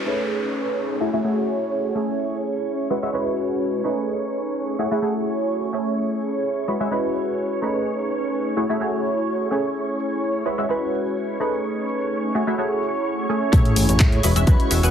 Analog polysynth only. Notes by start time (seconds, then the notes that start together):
0.06 A3 C#4 D#4 G#4 B4
1.00 A3 E4 F#4 G#4 C#5
1.13 A3 E4 F#4 G#4 E5
1.24 A3 E4 F#4 G#4 C#5
1.95 A3 C#4 E4 G#4 C#5
2.90 G#3 C#4 E4 F#4 B4
3.02 G#3 C#4 E4 F#4 E5
3.13 G#3 C#4 E4 F#4 B4
3.84 A3 C#4 D#4 G#4 B4
4.79 A3 E4 F#4 G#4 C#5
4.91 A3 E4 F#4 G#4 E5
5.02 A3 E4 F#4 G#4 C#5
5.73 A3 C#4 E4 G#4 C#5
6.68 G#3 C#4 E4 F#4 B4
6.80 G#3 C#4 E4 F#4 E5
6.91 G#3 C#4 E4 F#4 B4
7.62 A3 C#4 D#4 G#4 B4
8.56 A3 E4 F#4 G#4 C#5
8.69 A3 E4 F#4 G#4 E5
8.80 A3 E4 F#4 G#4 C#5
9.51 A3 C#4 E4 G#4 C#5
10.45 G#3 C#4 E4 F#4 B4
10.58 G#3 C#4 E4 F#4 E5
10.69 G#3 C#4 E4 F#4 B4
11.40 A3 C#4 D#4 G#4 B4
12.34 A3 E4 F#4 G#4 C#5
12.47 A3 E4 F#4 G#4 E5
12.58 A3 E4 F#4 G#4 C#5
13.29 A3 C#4 E4 G#4 C#5
13.52 A3 C#4 E4 G#4 C#5
14.23 G#3 C#4 E4 F#4 B4
14.36 G#3 C#4 E4 F#4 E5
14.47 G#3 C#4 E4 F#4 B4
14.71 G#3 C#4 E4 F#4 E5
14.83 G#3 C#4 E4 F#4 B4